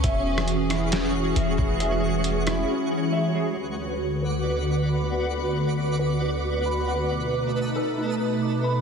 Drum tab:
HH |x---x-x-x---x---|x---x-x---------|----------------|----------------|
SD |---r--r-o-------|------r---------|----------------|----------------|
BD |o-------------o-|----------------|----------------|----------------|

HH |----------------|
SD |----------------|
BD |----------------|